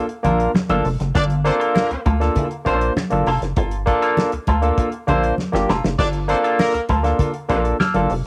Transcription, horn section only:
1.16 1.25 D4 loud
1.16 1.25 D5 loud
1.46 1.55 C4 medium
1.46 1.55 C5 loud
1.75 1.99 A#3 medium
1.75 1.99 A#4 medium
2.66 2.78 C4 medium
2.66 2.78 C5 medium
5.99 6.08 D4 loud
5.99 6.08 D5 loud
6.29 6.38 C4 medium
6.29 6.38 C5 medium
6.59 6.83 A#3 loud
6.59 6.83 A#4 loud
7.49 7.62 C4 medium
7.49 7.62 C5 medium

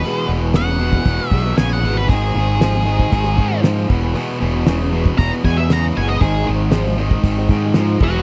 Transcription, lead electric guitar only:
0.00 0.29 B4 loud
0.56 1.27 F#5 loud
1.27 1.56 E5 loud
1.58 1.73 G#5 medium
1.73 1.97 F#5 medium
1.97 2.09 B4 medium
2.10 3.60 G#4 medium
5.18 5.31 A#5 loud
5.45 5.57 G#5 medium
5.57 5.70 E5 medium
5.73 5.84 A#5 medium
5.97 6.09 G#5 medium
6.09 6.21 D#5 medium
6.21 6.46 G#4 loud
8.03 8.22 C#5 medium
8.03 8.22 A#5 medium

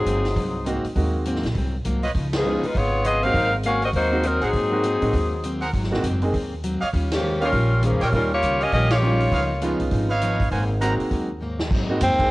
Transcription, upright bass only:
0.05 0.33 G1 medium
0.36 0.81 C2 medium
0.84 muted upright bass stroke soft
0.96 1.40 D#2 medium
1.43 1.54 A#1 medium
1.55 1.83 C2 medium
1.85 2.13 C2 medium
2.15 2.60 C#2 medium
2.63 muted upright bass stroke soft
2.75 3.31 G#1 medium
3.34 3.91 G#1 medium
3.93 4.39 D#2 medium
4.42 4.53 A1 medium
4.53 4.99 G#2 medium
5.02 5.13 A2 medium
5.13 5.70 D#2 medium
5.73 6.01 G#1 medium
6.03 6.31 F#1 medium
6.33 6.78 D#2 medium
6.82 muted upright bass stroke soft
6.93 7.50 D#2 medium
7.53 7.90 A#1 medium
7.92 8.01 F2 medium
8.02 8.11 A#2 medium
8.13 8.40 D#2 medium
8.42 8.70 C#2 medium
8.72 9.29 A#1 medium
9.32 9.77 C#2 medium
9.80 9.90 C2 medium
9.92 10.48 G#1 medium
10.51 10.96 G#1 medium
10.99 muted upright bass stroke soft
11.11 11.68 D#2 medium
11.71 12.00 G#2 medium
12.01 12.10 F#2 medium
12.10 12.20 D#2 medium
12.21 12.30 C2 medium

